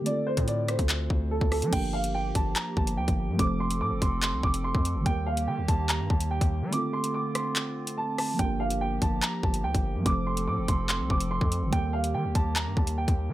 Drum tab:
CC |----------------|x---------------|----------------|----------------|
HH |x--xx-xxx-----ox|x--x--x-x--x-x--|x--x--x-x--x--x-|x--x--x-x--x-x--|
CP |--------x-------|--------x-------|--------x-------|--------x-------|
SD |------r-------r-|----------------|----------------|----------------|
BD |---o---o--o--o--|o-----o---o--o--|o-----o---o--o--|o-----o---o--o--|

CC |----------------|----------------|----------------|----------------|
HH |x--x--x-x--x--o-|x--x--x-x--x-x--|x--x--x-x--x--x-|x--x--x-x--x-x--|
CP |--------x-------|--------x-------|--------x-------|--------x-------|
SD |------r-------r-|----------------|----------------|----------------|
BD |----------------|o-----o---o--o--|o-----o---o--o--|o-----o---o--o--|